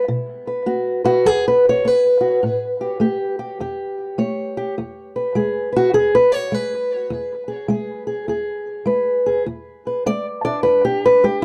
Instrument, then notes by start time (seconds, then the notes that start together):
steel-string acoustic guitar
0.08 B2
0.47 B4
0.66 B3 F#4
1.04 F#4 B4
1.25 F#3 G#4
1.48 B4
1.69 C#5
1.85 B3 B4
2.21 F#4
2.43 A2
2.81 G4
3.00 A3 G4
3.39 G4
3.60 E2 G4
4.18 A3 C#5
4.57 G4
4.78 E2
5.16 B4
5.35 G#3 G#4
5.72 B4
5.77 F#4
5.93 E2 G#4
6.15 B4
6.32 C#5
6.52 G#3 B4
7.10 E2
7.48 G#4
7.68 G#3 G#4
8.07 G#4
8.28 E2 G#4
8.86 G#3 B4
9.26 G#4
9.46 E2
9.87 B4
10.06 G#3 D5
10.45 D4 D5
10.63 E2 B4
10.85 G4
11.06 B4
11.24 G#3 G4